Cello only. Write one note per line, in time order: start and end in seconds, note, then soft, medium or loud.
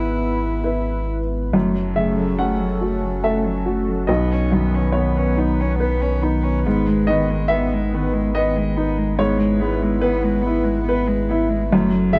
0.00 1.05 E4 medium
1.54 1.76 A3 soft
1.74 1.96 F#3 soft
1.95 2.18 A3 soft
2.17 2.39 F#3 soft
2.39 2.61 A3 soft
2.59 2.83 F#3 soft
2.81 3.05 A3 soft
3.04 3.23 F#3 soft
3.24 3.45 A3 soft
3.44 3.69 F#3 soft
3.67 3.89 A3 soft
3.87 4.09 F#3 soft
4.10 4.33 B3 soft
4.32 4.55 C#4 soft
4.53 4.76 B3 soft
4.74 4.95 C#4 soft
4.95 5.19 B3 soft
5.17 5.40 C#4 soft
5.38 5.62 B3 soft
5.60 5.78 C#4 soft
5.79 6.02 B3 medium
6.01 6.24 C#4 soft
6.22 6.45 B3 soft
6.43 6.65 C#4 soft
6.66 6.90 B3 medium
6.88 7.11 G#3 soft
7.10 7.32 B3 soft
7.30 7.51 G#3 soft
7.51 7.75 B3 soft
7.73 7.95 G#3 soft
7.94 8.15 B3 soft
8.13 8.35 G#3 medium
8.36 8.58 B3 medium
8.56 8.78 G#3 soft
8.76 8.99 B3 soft
8.98 9.19 G#3 soft
9.19 9.39 B3 medium
9.38 9.62 G#3 medium
9.60 9.84 B3 medium
9.82 10.01 G#3 soft
10.02 10.25 B3 medium
10.23 10.43 G#3 soft
10.42 10.65 B3 medium
10.63 10.84 G#3 medium
10.84 11.09 B3 medium
11.07 11.31 G#3 medium
11.29 11.50 B3 soft
11.49 11.68 G#3 medium
11.69 11.92 A3 medium
11.90 12.14 F#3 soft
12.12 12.19 A3 medium